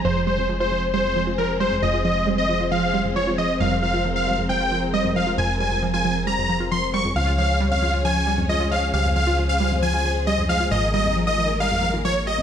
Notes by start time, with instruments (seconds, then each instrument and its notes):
Already playing: string section G#3 G#4 C5
0.05 fm bass F1, synth pluck F3, string section F3 C4, supersaw synth C5
0.27 synth pluck G3, supersaw synth C5
0.38 synth pluck F2
0.49 synth pluck F3
0.60 synth pluck F4, supersaw synth C5
0.72 synth pluck F3
0.94 synth pluck G3, supersaw synth C5
1.05 synth pluck F2
1.16 synth pluck F3
1.27 synth pluck F4
1.38 synth pluck F3, supersaw synth A#4
1.60 synth pluck G3, supersaw synth C5
1.72 synth pluck F2
1.82 fm bass F1, synth pluck F3, supersaw synth D#5
1.94 synth pluck F4
2.05 synth pluck F3, supersaw synth D#5
2.27 synth pluck G3
2.38 synth pluck F2, supersaw synth D#5
2.49 synth pluck F3
2.60 synth pluck F4
2.71 synth pluck F3, supersaw synth F5
2.94 synth pluck G3
3.05 synth pluck F2
3.16 synth pluck F3, supersaw synth C#5
3.27 synth pluck F4
3.38 synth pluck F3, supersaw synth D#5
3.60 fm bass F1, synth pluck G3, string section A#4, supersaw synth F5
3.71 synth pluck F2
3.82 synth pluck F3, supersaw synth F5
3.94 synth pluck F4
4.05 synth pluck F3
4.16 supersaw synth F5
4.27 synth pluck G3
4.38 synth pluck F2
4.49 synth pluck F3, supersaw synth G5
4.60 synth pluck F4
4.71 synth pluck F3
4.94 synth pluck G3, supersaw synth D#5
5.05 synth pluck F2
5.16 synth pluck F3, supersaw synth F5
5.27 synth pluck F4
5.38 fm bass F1, synth pluck F3, supersaw synth G#5
5.60 synth pluck G3, supersaw synth G#5
5.71 synth pluck F2
5.83 synth pluck F3
5.94 synth pluck F4, supersaw synth G#5
6.05 synth pluck F3
6.27 synth pluck G3, supersaw synth A#5
6.38 synth pluck F2
6.49 synth pluck F3
6.60 synth pluck F4
6.71 synth pluck F3, supersaw synth C6
6.94 synth pluck G3, supersaw synth C#6
7.05 synth pluck F2
7.16 fm bass C#2, synth pluck F3, string section G#3 C#4 G#4 C#5, supersaw synth F5
7.27 synth pluck F4
7.38 synth pluck F3, supersaw synth F5
7.60 synth pluck G3
7.71 synth pluck F2, supersaw synth F5
7.83 synth pluck F3
7.94 synth pluck F4
8.05 synth pluck F3, supersaw synth G#5
8.27 synth pluck G3
8.38 synth pluck F2
8.49 synth pluck F3, supersaw synth D#5
8.60 synth pluck F4
8.71 synth pluck F3, supersaw synth F5
8.94 fm bass C#2, synth pluck G3, string section C5, supersaw synth F5
9.05 synth pluck F2
9.16 synth pluck F3, supersaw synth F5
9.27 synth pluck F4
9.38 synth pluck F3
9.49 supersaw synth F5
9.60 synth pluck G3
9.71 synth pluck F2
9.82 synth pluck F3, supersaw synth G#5
9.94 synth pluck F4
10.05 synth pluck F3
10.27 synth pluck G3, supersaw synth D#5
10.38 synth pluck F2
10.49 synth pluck F3, supersaw synth F5
10.60 synth pluck F4
10.71 fm bass G#1, string section D#3 A#3 A#4, synth pluck F3, supersaw synth D#5
10.94 synth pluck G3, supersaw synth D#5
11.05 synth pluck F2
11.16 synth pluck F3
11.27 synth pluck F4, supersaw synth D#5
11.38 synth pluck F3
11.60 synth pluck G3, supersaw synth F5
11.71 synth pluck F2
11.83 synth pluck F3
11.94 synth pluck F4
12.05 synth pluck F3, supersaw synth C#5
12.27 synth pluck G3, supersaw synth D#5
12.38 synth pluck F2